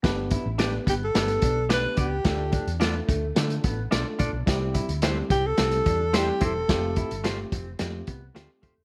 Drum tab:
HH |x-x-x-x-xxx-x-x-|x-xxx-x-xxx-x-x-|x-xxx-x-xxx-x-x-|x-xxx-x-x-x-x-x-|
SD |o---o---o---o---|o---o---o---o---|o---o---o---o---|o---o---o---o---|
BD |o-o---o---o---o-|o-o---o---o---o-|o-o---o---o---o-|o-o---o---o---o-|